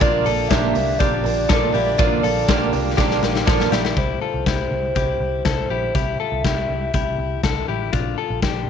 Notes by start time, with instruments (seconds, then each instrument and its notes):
0.00 picked electric bass A#1, twelve-string acoustic guitar A#2 D3 F3 A#3 D4, clean electric guitar D4 F4, soft synth lead D5, kick, closed hi-hat
0.24 picked electric bass A#1, twelve-string acoustic guitar F3 A#3 D4, clean electric guitar F4 A4, open hi-hat
0.49 picked electric bass A#1, twelve-string acoustic guitar A#2 D3 F3 A#3 D4, clean electric guitar D4 G4, soft synth lead E5, kick, snare, closed hi-hat
0.75 picked electric bass C2, twelve-string acoustic guitar F3 A#3 D4, open hi-hat
0.99 picked electric bass A#1, twelve-string acoustic guitar D3 F3 A#3 D4, clean electric guitar D4 G4, soft synth lead D5, kick, closed hi-hat
1.24 picked electric bass A#1, twelve-string acoustic guitar F3 A#3 D4, open hi-hat
1.49 picked electric bass A#1, twelve-string acoustic guitar A#2 D3 F3 A#3 D4, clean electric guitar F4 A4, kick, snare, closed hi-hat
1.73 picked electric bass A#1, twelve-string acoustic guitar F3 A#3 D4, clean electric guitar E4 G4, open hi-hat
1.98 picked electric bass A#1, twelve-string acoustic guitar A#2 D3 F3 A#3 D4, clean electric guitar D4 F4, kick, closed hi-hat
2.23 picked electric bass A#1, twelve-string acoustic guitar F3 A#3 D4, clean electric guitar F4 A4, open hi-hat
2.48 picked electric bass A#1, twelve-string acoustic guitar A#2 D3 F3 A#3 D4, clean electric guitar D4 G4, kick, snare, closed hi-hat
2.72 picked electric bass C2, twelve-string acoustic guitar F3 A#3 D4, open hi-hat
2.97 picked electric bass A#1, twelve-string acoustic guitar D3 F3 A#3 D4, clean electric guitar D4 G4, kick, snare
3.11 snare
3.22 picked electric bass A#1, twelve-string acoustic guitar F3 A#3 D4, snare
3.35 snare
3.46 picked electric bass A#1, twelve-string acoustic guitar A#2 D3 F3 A#3 D4, clean electric guitar F4 A4, kick, snare
3.60 snare
3.70 picked electric bass A#1, twelve-string acoustic guitar F3 A#3 D4, clean electric guitar E4 G4, snare
3.85 snare
3.96 picked electric bass C2, clean electric guitar E4 G4, soft synth lead C5, kick, closed hi-hat
4.21 clean electric guitar F4 A4
4.34 picked electric bass C2
4.46 picked electric bass C2, clean electric guitar E4 G4, kick, snare, closed hi-hat
4.71 picked electric bass C2
4.95 picked electric bass C2, clean electric guitar E4 G4, kick, closed hi-hat
5.20 picked electric bass C2
5.45 picked electric bass C2, clean electric guitar E4 A4, kick, snare, closed hi-hat
5.70 picked electric bass A#1, clean electric guitar E4 G4
5.95 picked electric bass C2, clean electric guitar E4 G4, soft synth lead E5, kick, closed hi-hat
6.20 clean electric guitar F4 A4
6.32 picked electric bass C2
6.45 picked electric bass C2, clean electric guitar E4 G4, kick, snare, closed hi-hat
6.69 picked electric bass C2
6.93 picked electric bass C2, clean electric guitar E4 G4, kick, closed hi-hat
7.18 picked electric bass C2
7.43 picked electric bass C2, clean electric guitar E4 A4, kick, snare, closed hi-hat
7.68 picked electric bass A1, clean electric guitar E4 G4
7.93 picked electric bass A#1, clean electric guitar D4 F4, kick, closed hi-hat
8.18 clean electric guitar F4 A4
8.30 picked electric bass A#1
8.42 picked electric bass A#1, clean electric guitar D4 G4, kick, snare, closed hi-hat